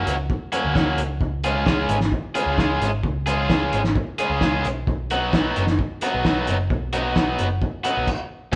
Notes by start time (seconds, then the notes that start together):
Already playing: F#3 A#3 C#4 F#4
0.07 C#2, closed hi-hat
0.30 kick
0.52 F#3 A#3 C#4 F#4, closed hi-hat
0.65 D2
0.75 F#3 A#3 C#4 F#4, kick, snare
0.98 C#2, closed hi-hat
1.21 C#2, kick
1.44 G#3 C#4 F4 G#4, closed hi-hat
1.66 G#3 C#4 F4 G#4, kick, snare
1.89 G#1, closed hi-hat
2.01 snare
2.12 kick
2.35 G#3 C#4 F4 G#4, closed hi-hat
2.46 C#2
2.58 G#3 C#4 F4 G#4, kick, snare
2.80 G#1, closed hi-hat
3.03 C#2, kick
3.26 G#3 C#4 F4 G#4, closed hi-hat
3.49 G#3 C#4 F4 G#4, kick, snare
3.73 G#1, closed hi-hat
3.84 snare
3.96 kick
4.18 G#3 C#4 F4 G#4, closed hi-hat
4.30 C#2
4.41 G#3 C#4 F4 G#4, kick, snare
4.65 B1, closed hi-hat
4.87 B1, kick
5.10 F#3 B3 D#4 F#4, closed hi-hat
5.33 F#3 B3 D#4 F#4, kick, snare
5.56 F#1, closed hi-hat
5.67 snare
5.79 kick
6.01 F#3 B3 D#4 F#4, closed hi-hat
6.14 B1
6.25 F#3 B3 D#4 F#4, kick, snare
6.47 F#1, closed hi-hat
6.70 B1, kick
6.93 F#3 B3 D#4 F#4, closed hi-hat
7.16 F#3 B3 D#4 F#4, kick, snare
7.39 F#1, closed hi-hat
7.62 kick
7.84 F#3 B3 D#4 F#4, closed hi-hat
7.97 B1
8.07 kick, crash